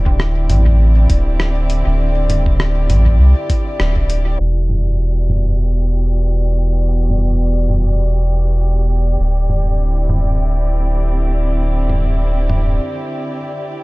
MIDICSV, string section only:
0, 0, Header, 1, 2, 480
1, 0, Start_track
1, 0, Key_signature, 1, "minor"
1, 0, Tempo, 600000
1, 1597, Time_signature, 4, 2, 24, 8
1, 11066, End_track
2, 0, Start_track
2, 0, Title_t, "String section"
2, 0, Program_c, 0, 48
2, 0, Note_on_c, 0, 50, 71
2, 0, Note_on_c, 0, 60, 75
2, 0, Note_on_c, 0, 64, 72
2, 0, Note_on_c, 0, 67, 67
2, 0, Note_on_c, 0, 74, 66
2, 3516, Note_off_c, 0, 60, 0
2, 3517, Note_off_c, 0, 50, 0
2, 3517, Note_on_c, 0, 52, 56
2, 3820, Note_on_c, 0, 66, 60
2, 3913, Note_on_c, 0, 59, 65
2, 4874, Note_off_c, 0, 64, 0
2, 7356, Note_on_c, 0, 50, 64
2, 7357, Note_off_c, 0, 52, 0
2, 7358, Note_off_c, 0, 59, 0
2, 7359, Note_off_c, 0, 66, 0
2, 7582, Note_on_c, 0, 60, 72
2, 7874, Note_on_c, 0, 64, 73
2, 11066, Note_off_c, 0, 50, 0
2, 11066, Note_off_c, 0, 60, 0
2, 11066, Note_off_c, 0, 64, 0
2, 11066, Note_off_c, 0, 67, 0
2, 11066, Note_off_c, 0, 74, 0
2, 11066, End_track
0, 0, End_of_file